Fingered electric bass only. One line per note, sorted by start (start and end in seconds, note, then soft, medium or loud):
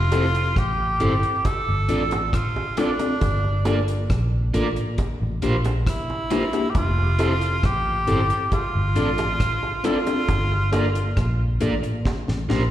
0.00 0.52 F1 loud
0.57 0.97 A1 loud
1.01 1.22 G1 medium
1.68 1.88 G1 medium
1.90 2.31 A1 medium
3.22 4.06 G1 medium
4.10 4.51 A#1 loud
4.55 4.75 A1 medium
5.22 5.41 A1 loud
5.44 5.84 A#1 medium
6.75 7.60 F1 medium
7.64 8.05 A1 medium
8.08 8.29 G1 medium
8.75 8.95 G1 medium
8.97 9.37 A1 medium
10.29 11.13 G1 loud
11.17 11.58 A#1 medium
11.62 11.83 A1 medium
12.29 12.48 A1 medium
12.51 12.71 A#1 medium